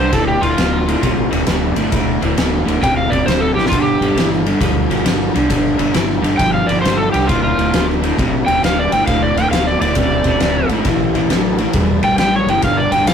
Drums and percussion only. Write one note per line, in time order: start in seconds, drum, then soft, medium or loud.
0.13 kick loud
0.13 ride medium
0.43 ride medium
0.58 snare loud
0.58 ride medium
0.89 ride medium
1.03 kick loud
1.03 ride medium
1.33 ride medium
1.47 snare loud
1.47 ride medium
1.76 ride medium
1.92 kick loud
1.92 ride medium
2.22 ride medium
2.38 snare loud
2.38 ride medium
2.68 ride medium
2.83 kick loud
2.83 ride medium
3.12 kick medium
3.12 ride medium
3.28 snare loud
3.28 ride medium
3.58 snare medium
3.66 snare medium
3.72 kick loud
3.72 ride medium
4.02 ride medium
4.18 snare loud
4.18 ride medium
4.33 snare soft
4.46 ride medium
4.61 kick loud
4.61 ride medium
4.91 ride medium
5.06 snare loud
5.06 ride medium
5.36 ride medium
5.50 kick loud
5.50 ride medium
5.79 ride medium
5.94 snare loud
5.94 ride medium
6.10 snare soft
6.24 ride medium
6.39 kick loud
6.39 ride medium
6.69 ride medium
6.85 snare loud
6.85 ride medium
7.14 ride medium
7.29 kick loud
7.29 ride medium
7.59 ride medium
7.74 snare loud
7.74 ride medium
7.90 snare soft
8.04 snare soft
8.04 ride medium
8.19 kick loud
8.19 ride medium
8.48 ride medium
8.64 snare loud
8.64 ride medium
8.92 ride medium
9.07 kick loud
9.07 ride medium
9.37 ride medium
9.53 snare loud
9.53 ride medium
9.82 ride medium
9.95 kick loud
9.95 ride medium
10.24 kick medium
10.24 ride medium
10.40 snare loud
10.40 ride medium
10.69 ride medium
10.85 kick loud
10.85 ride medium
11.15 ride medium
11.30 snare loud
11.30 ride medium
11.58 ride medium
11.73 kick loud
11.73 ride medium
12.03 ride medium
12.18 snare loud
12.18 ride medium
12.48 ride medium
12.62 kick loud
12.62 ride medium
12.92 ride medium
13.07 snare loud
13.07 ride medium